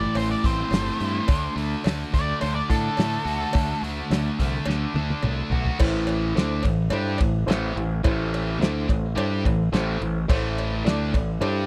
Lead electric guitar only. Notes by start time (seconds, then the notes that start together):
Already playing: D5
0.17 C5
0.31 D5
0.46 C5
2.14 D5
2.41 C5
2.55 D5
2.70 A4